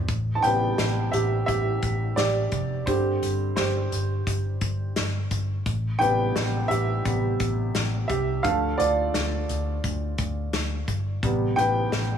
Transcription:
Already playing: upright piano D4 G4 C5
0.08 picked electric bass A1, kick, closed hi-hat
0.35 upright piano A5
0.42 picked electric bass A1, upright piano C3 G3 B3 B4 G5, closed hi-hat
0.78 picked electric bass A1, snare, closed hi-hat
1.12 picked electric bass A1, upright piano G4 E5, closed hi-hat
1.46 picked electric bass A1, upright piano G4 E5, kick, closed hi-hat
1.82 picked electric bass A1, kick, closed hi-hat
2.16 picked electric bass A1, upright piano G4 D5, snare, closed hi-hat
2.52 picked electric bass F1, kick, closed hi-hat
2.86 picked electric bass G1, upright piano D3 G3 C4 G4 C5, kick, closed hi-hat
3.22 picked electric bass G1, closed hi-hat
3.56 picked electric bass G1, upright piano G4 C5, snare, closed hi-hat
3.92 picked electric bass G1, closed hi-hat
4.27 picked electric bass G1, kick, closed hi-hat
4.61 picked electric bass G1, kick, closed hi-hat
4.96 picked electric bass G1, snare, closed hi-hat
5.31 picked electric bass G1, kick, closed hi-hat
5.66 picked electric bass A1, kick, closed hi-hat
5.99 picked electric bass A1, upright piano C3 G3 B3 B4 G5, closed hi-hat
6.36 picked electric bass A1, snare, closed hi-hat
6.68 picked electric bass A1, upright piano G4 E5, closed hi-hat
7.04 picked electric bass A1, upright piano C3 G3 B3, kick, closed hi-hat
7.40 picked electric bass A1, kick, closed hi-hat
7.75 picked electric bass A1, snare, closed hi-hat
8.08 picked electric bass C2, upright piano G4 E5, kick, closed hi-hat
8.43 picked electric bass D2, upright piano D3 F3 A3 A4 F5, kick, closed hi-hat
8.78 picked electric bass D2, upright piano F4 D5, closed hi-hat
9.14 picked electric bass D2, snare, closed hi-hat
9.49 picked electric bass D2, closed hi-hat
9.84 picked electric bass D2, kick, closed hi-hat
10.18 picked electric bass D2, kick, closed hi-hat
10.53 picked electric bass D2, snare, closed hi-hat
10.88 picked electric bass G1, kick, closed hi-hat
11.23 picked electric bass A1, upright piano C3 G3 B3, kick, closed hi-hat
11.56 picked electric bass A1, upright piano B4 G5, closed hi-hat
11.92 picked electric bass A1, snare, closed hi-hat

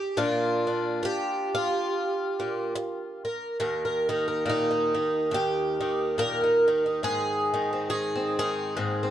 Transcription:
Already playing: twelve-string acoustic guitar G4 G#4
0.17 twelve-string acoustic guitar A#2 D4 F4
0.67 twelve-string acoustic guitar D4
1.03 twelve-string acoustic guitar G4, muted twelve-string acoustic guitar stroke
1.55 twelve-string acoustic guitar F4
2.40 twelve-string acoustic guitar A#2
2.75 muted twelve-string acoustic guitar stroke
3.25 twelve-string acoustic guitar A#4
3.60 twelve-string acoustic guitar D#2 A#4
3.85 twelve-string acoustic guitar A#4
4.09 twelve-string acoustic guitar D#3 A#4
4.28 twelve-string acoustic guitar A#4
4.46 twelve-string acoustic guitar A#2 D#4
4.71 twelve-string acoustic guitar D#3
4.94 twelve-string acoustic guitar D#3
5.31 twelve-string acoustic guitar D#2 G4
5.81 twelve-string acoustic guitar D#3
6.18 twelve-string acoustic guitar A#2 A#4
6.44 twelve-string acoustic guitar D#4
6.68 twelve-string acoustic guitar D#3
6.86 twelve-string acoustic guitar D#4
7.03 twelve-string acoustic guitar G#2 G#4
7.54 twelve-string acoustic guitar D#3
7.73 twelve-string acoustic guitar C4
7.90 twelve-string acoustic guitar D#3 G#4
8.15 twelve-string acoustic guitar C4
8.39 twelve-string acoustic guitar D#3 G#4
8.77 twelve-string acoustic guitar G#2 C4
9.03 twelve-string acoustic guitar C4

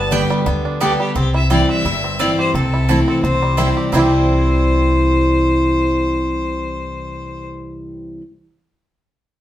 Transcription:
Already playing: upright bass G1, steel-string acoustic guitar G2, five-string banjo G3 B3 G4, fiddle A5
0.11 steel-string acoustic guitar D3 G3 B3 G4, mandolin B3 G4 D5 G5, five-string banjo D4, fiddle G5
0.30 five-string banjo G3
0.46 upright bass D2, steel-string acoustic guitar D3, five-string banjo B3
0.65 five-string banjo D4
0.81 steel-string acoustic guitar D3 G3 B3 G4, mandolin B3 G4 D5 G5, five-string banjo B3, fiddle A4
1.00 five-string banjo G3, fiddle G4
1.15 upright bass C2, steel-string acoustic guitar C3, five-string banjo C4, fiddle G4
1.34 five-string banjo E4, fiddle E5
1.50 steel-string acoustic guitar E3 G3 C4 E4, five-string banjo G3, mandolin C4 E4 C5 G5, fiddle D5
1.69 five-string banjo C4, fiddle E5
1.85 upright bass G1, steel-string acoustic guitar G2, five-string banjo E4
2.04 five-string banjo C4
2.19 steel-string acoustic guitar E3 G3 C4 E4, mandolin C4 E4 C5 G5, five-string banjo E4, fiddle D5
2.39 five-string banjo G4, fiddle C5
2.54 upright bass C2, steel-string acoustic guitar C3, five-string banjo C4, fiddle A4
2.74 five-string banjo E4
2.89 steel-string acoustic guitar E3 A3 C4 E4, five-string banjo A3, mandolin C4 E4 C5 A5
3.08 five-string banjo C4, fiddle A4
3.23 upright bass C2, steel-string acoustic guitar C3, five-string banjo C4, fiddle C5
3.42 five-string banjo G3
3.57 steel-string acoustic guitar E3 G3 C4 E4, mandolin C4 E4 C5 G5, five-string banjo E4
3.77 five-string banjo G4
3.92 upright bass C2, steel-string acoustic guitar C3 E3 G3 C4 E4, five-string banjo G3 C4, mandolin C4 E4 C5 G5, fiddle C5
3.97 five-string banjo E4 G4

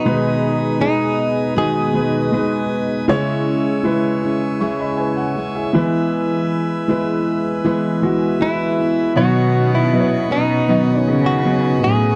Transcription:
Already playing: clean electric guitar D#4, pipe organ B4
0.04 steel-string acoustic guitar B2 D#3 G#3 B3 D#4 G#4, grand piano B2 G#3 D#4 B4, pipe organ D#5 G#5 D#6
0.80 steel-string acoustic guitar G#3 B3 D#4 G#4, grand piano G#3 D#4 G#4, clean electric guitar D#4
1.56 steel-string acoustic guitar B2 D#3 G#3 B3 D#4 G#4, grand piano G#3 D#4 F#4, clean electric guitar G#4
1.94 grand piano G#3 D#4 B4
2.32 grand piano G#3 D#4 B4, steel-string acoustic guitar G#3 B3 D#4 G#4
3.08 grand piano C#3 G#3 E4 C#5, steel-string acoustic guitar C#3 G#3 C#4 E4 G#4, pipe organ C#5 E5 E6
3.83 grand piano G#3 E4 B4, steel-string acoustic guitar G#3 C#4 E4 G#4
4.23 steel-string acoustic guitar C#4 E4 G#4
4.60 steel-string acoustic guitar C#3 G#3 C#4 E4 G#4, grand piano E5 C#6
4.79 grand piano D#5 B5
4.97 grand piano B4 G#5
5.16 grand piano F#5
5.37 steel-string acoustic guitar G#3 C#4 E4 G#4
5.55 grand piano G#4 E5
5.73 grand piano E3 G#3 E4 B4, steel-string acoustic guitar E3 G#3 B3 E4 G#4, pipe organ B4 E5
6.88 grand piano G#3 E4 B4, steel-string acoustic guitar G#3 B3 E4 G#4
7.64 steel-string acoustic guitar E3 G#3 B3 E4 G#4, grand piano G#3 E4 B4
8.02 grand piano G#3 E4 F#4
8.40 grand piano G#3 E4 B4, steel-string acoustic guitar G#3 B3 E4 G#4, clean electric guitar E4
8.79 steel-string acoustic guitar B3 E4 G#4
9.15 grand piano B2 B3 D#4 C#5, steel-string acoustic guitar B2 D#3 F#3 C#4 D#4 B4, cello section B2, clean electric guitar F#4, pipe organ D#5 F#5 C#6
9.75 clean electric guitar E4
9.92 steel-string acoustic guitar F#3 C#4 B4, grand piano B3 B4 D#5
10.00 grand piano C#5
10.30 cello section B2, steel-string acoustic guitar F#3 C#4 D#4 B4, clean electric guitar D#4
10.68 steel-string acoustic guitar B2 D#3 F#3 C#4 D#4 B4, grand piano B3 D#4 D#5
11.01 clean electric guitar C#4
11.06 cello section C#3, grand piano B3 D#4 G#4
11.26 clean electric guitar F#4
11.44 steel-string acoustic guitar F#3 C#4 D#4 B4, grand piano B3 D#4 G#4
11.81 cello section A2, steel-string acoustic guitar F#3 C#4 D#4 B4, clean electric guitar G#4

